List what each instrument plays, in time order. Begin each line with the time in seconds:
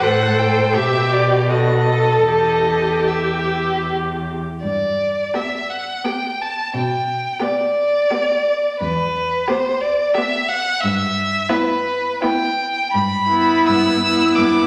0.01 cello A2, viola A4, violin C5 F#5
0.39 violin G5
0.74 cello B2, viola G4, violin G4 E5
1.13 violin D5
1.48 viola F#4, violin A4 D#5
1.88 viola A4
2.28 cello E2, viola G4, violin D#5
3.08 violin G4 E5
4.63 cello G2, violin D5
5.34 viola B3, violin G4 E5
5.70 violin F#5
6.04 viola B3, violin G4 G5
6.41 violin A5
6.74 cello B2, violin G5
7.40 viola B3, violin G4 D5
8.11 viola B3, violin G4
8.80 cello E2, violin B4
9.48 viola B3, violin G4 C5
9.81 violin D5
10.14 viola B3, violin G4 E5
10.49 violin F#5
10.80 cello G2, violin E5
11.49 viola B3, violin E4 B4
12.22 viola B3, violin E4 G5
12.93 cello G2, violin B5
13.28 viola B3, violin E4
13.66 cello G2, violin E6
14.01 viola B3, violin E4
14.35 cello G2, violin D6